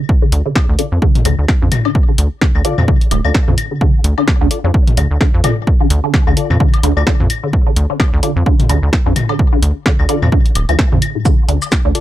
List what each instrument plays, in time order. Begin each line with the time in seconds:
0.09 kick
0.22 synth arpeggio sound D3
0.32 analog synth bass D2, closed hi-hat
0.46 synth arpeggio sound D3
0.56 kick, snare, high woodblock
0.69 analog synth bass D2
0.79 synth arpeggio sound D3, synth stab F4 A4 D5, closed hi-hat
0.92 analog synth bass F2
1.02 synth arpeggio sound D3, kick
1.15 closed hi-hat, mid tom
1.25 analog synth bass D2, synth arpeggio sound D3, closed hi-hat, claves
1.39 analog synth bass D2
1.48 kick, snare
1.62 analog synth bass F2, synth arpeggio sound D3
1.72 closed hi-hat, mid tom, claves
1.85 synth arpeggio sound D3, high woodblock
1.95 kick
2.08 synth arpeggio sound D3
2.18 analog synth bass D2, closed hi-hat
2.41 synth arpeggio sound D3, kick, snare
2.55 analog synth bass D2, claves
2.65 synth arpeggio sound D3, synth stab F4 A4 D5, closed hi-hat
2.78 analog synth bass F2, mid tom, claves
2.88 synth arpeggio sound D3, kick
3.01 closed hi-hat
3.11 analog synth bass D1, synth arpeggio sound A3, closed hi-hat, high woodblock
3.25 analog synth bass D2, synth arpeggio sound D4, synth stab F4 A4 D5, claves
3.34 kick, snare
3.48 analog synth bass F2, synth arpeggio sound D3, mid tom
3.58 closed hi-hat, claves
3.71 synth arpeggio sound D3
3.81 synth arpeggio sound D3, kick
4.04 analog synth bass D2, closed hi-hat
4.18 synth arpeggio sound D3, high woodblock
4.28 kick, snare
4.41 analog synth bass D2, synth arpeggio sound D3
4.51 synth stab F4 A4 D5, closed hi-hat
4.64 analog synth bass F2, synth arpeggio sound D3
4.74 kick
4.87 closed hi-hat, mid tom
4.97 analog synth bass D2, synth arpeggio sound D3, closed hi-hat, claves
5.11 analog synth bass D2
5.21 synth arpeggio sound D3, kick, snare
5.34 analog synth bass F2
5.44 synth arpeggio sound D3, synth stab F4 A4 D5, closed hi-hat, mid tom, claves, high woodblock
5.67 kick
5.81 synth arpeggio sound D3
5.90 analog synth bass D2, closed hi-hat
6.04 synth arpeggio sound D3
6.14 kick, snare
6.27 analog synth bass D2, synth arpeggio sound D3, claves
6.37 synth stab F4 A4 D5, closed hi-hat
6.50 analog synth bass F2, mid tom, claves
6.60 synth arpeggio sound D3, kick
6.74 closed hi-hat, high woodblock
6.83 analog synth bass D2, synth arpeggio sound D3, closed hi-hat
6.97 analog synth bass D2, synth stab F4 A4 D5, claves
7.07 synth arpeggio sound D3, kick, snare
7.20 analog synth bass F2, mid tom
7.30 closed hi-hat, claves
7.43 synth arpeggio sound D3
7.53 kick
7.67 synth arpeggio sound D3
7.76 analog synth bass D2, closed hi-hat
7.90 synth arpeggio sound D3
8.00 kick, snare, high woodblock
8.13 analog synth bass D2
8.23 synth arpeggio sound D3, synth stab F4 A4 D5, closed hi-hat
8.36 analog synth bass F2
8.46 synth arpeggio sound D3, kick
8.60 closed hi-hat, mid tom
8.69 analog synth bass D2, synth arpeggio sound D3, closed hi-hat, claves
8.83 analog synth bass D2
8.93 kick, snare
9.06 analog synth bass F2, synth arpeggio sound D3
9.16 closed hi-hat, mid tom, claves
9.29 synth arpeggio sound D3, high woodblock
9.39 kick
9.53 synth arpeggio sound D3
9.62 analog synth bass D2, closed hi-hat
9.86 synth arpeggio sound D3, kick, snare
9.99 analog synth bass D2, claves
10.09 synth arpeggio sound D3, synth stab F4 A4 D5, closed hi-hat
10.22 analog synth bass F2, mid tom, claves
10.32 synth arpeggio sound D3, kick
10.46 closed hi-hat
10.55 analog synth bass D1, closed hi-hat, high woodblock
10.69 analog synth bass D2, synth arpeggio sound F3, closed hi-hat, claves
10.79 kick, snare
10.92 analog synth bass F2, synth arpeggio sound D3, mid tom
11.02 closed hi-hat, claves
11.15 synth arpeggio sound A2
11.25 synth arpeggio sound D3, kick, shaker
11.48 analog synth bass D2, synth arpeggio sound D3, closed hi-hat
11.62 high woodblock, shaker
11.72 kick, snare, shaker
11.85 analog synth bass D2, synth arpeggio sound D3
11.95 synth stab F4 A4 D5, closed hi-hat